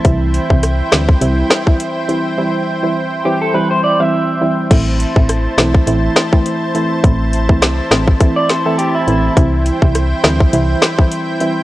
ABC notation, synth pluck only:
X:1
M:4/4
L:1/16
Q:"Swing 16ths" 1/4=103
K:Am
V:1 name="Synth pluck"
[E,G,CE]3 [E,G,CE] z2 [E,G,CE] z [E,G,CE]3 [E,G,CE]3 [E,G,CE]2 | [E,G,CE]3 [E,G,CE] z2 [E,G,CE] z [E,G,CE]3 [E,G,CE]3 [E,G,CE]2 | [E,A,CE]3 [E,A,CE] z2 [E,A,CE] z [E,A,CE]3 [E,A,CE]3 [E,A,CE]2 | [E,A,CE]3 [E,A,CE] z2 [E,A,CE] z [E,A,CE]3 [E,A,CE]3 [E,A,CE]2 |
[E,G,CE]3 [E,G,CE] z2 [E,G,CE] z [E,G,CE]3 [E,G,CE]3 [E,G,CE]2 |]